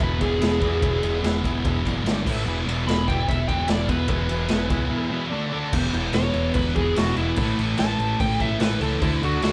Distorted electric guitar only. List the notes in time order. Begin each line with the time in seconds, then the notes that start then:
0.00 E2 B2 E3
0.19 E2 B2 E3
0.38 E2 B2 E3
0.60 E2 B2 E3
0.81 E2 B2 E3
1.03 E2 B2 E3
1.21 E2 B2 E3
1.42 E2 B2 E3
1.64 E2 B2 E3
1.84 E2 B2 E3
2.03 G2 D3 G3
2.25 A2 E3 A3
2.45 E2 B2 E3
2.67 E2 B2 E3
2.86 E2 B2 E3
3.08 E2 B2 E3
3.28 E2 B2 E3
3.48 E2 B2 E3
3.68 E2 B2 E3
3.90 E2 B2 E3
4.09 E2 B2 E3
4.29 E2 B2 E3
4.49 E2 B2 E3
4.69 E2 B2 E3
4.89 E2 B2 E3
5.10 E2 B2 E3
5.31 D3 A3 D4
5.52 D3 A3 D4
5.72 E2 B2 E3
5.93 B2 E3
6.15 E2 B2 E3
6.76 B2 E3
6.96 E2 B2
7.00 E3
7.16 E3
7.20 B2
7.37 A2 E3 A3
7.57 E3 A3
7.78 A2 E3
7.83 A3
8.40 E3 A3
8.60 A2 E3 A3
8.80 A3
8.84 E3
9.00 D3 A3 D4
9.22 A3 D4
9.40 D3 A3 D4